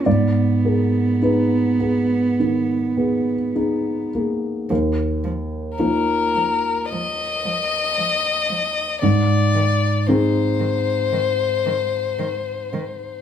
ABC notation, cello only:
X:1
M:4/4
L:1/8
Q:1/4=55
K:Ablyd
V:1 name="Cello" clef=bass
_C6- C z | F, F, F, F, F, F, F, F, | E, E, E, E, E, E, E, E, |]